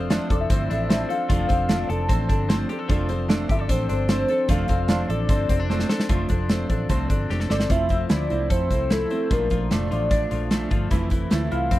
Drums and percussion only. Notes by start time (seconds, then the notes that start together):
0.10 snare, closed hi-hat
0.30 kick, closed hi-hat
0.50 kick, closed hi-hat
0.71 closed hi-hat
0.90 snare, closed hi-hat
1.10 closed hi-hat
1.30 kick, closed hi-hat
1.49 kick, closed hi-hat
1.69 snare, closed hi-hat
1.90 closed hi-hat
2.09 kick, closed hi-hat
2.29 kick, closed hi-hat
2.50 snare, closed hi-hat
2.69 closed hi-hat
2.89 kick, closed hi-hat
3.09 closed hi-hat
3.30 snare, closed hi-hat
3.49 kick, closed hi-hat
3.69 kick, closed hi-hat
3.90 closed hi-hat
4.09 snare, closed hi-hat
4.28 closed hi-hat
4.49 kick, closed hi-hat
4.68 kick, closed hi-hat
4.88 snare, closed hi-hat
5.10 closed hi-hat
5.29 kick, closed hi-hat
5.49 kick, closed hi-hat
5.70 snare
5.79 snare
5.89 snare
6.00 snare
6.09 kick, closed hi-hat
6.29 kick, closed hi-hat
6.49 snare, closed hi-hat
6.70 kick, closed hi-hat
6.89 kick, closed hi-hat
7.10 kick, closed hi-hat
7.30 snare
7.40 snare
7.50 snare
7.60 snare
7.70 kick, closed hi-hat
7.89 kick, closed hi-hat
8.09 snare, closed hi-hat
8.30 closed hi-hat
8.50 kick, closed hi-hat
8.71 kick, closed hi-hat
8.90 snare, closed hi-hat
9.10 closed hi-hat
9.31 kick, closed hi-hat
9.50 kick, closed hi-hat
9.71 snare, closed hi-hat
9.92 closed hi-hat
10.11 kick, closed hi-hat
10.31 closed hi-hat
10.51 snare, closed hi-hat
10.71 kick, closed hi-hat
10.91 kick, closed hi-hat
11.10 kick, closed hi-hat
11.31 snare, closed hi-hat
11.52 closed hi-hat
11.71 kick, closed hi-hat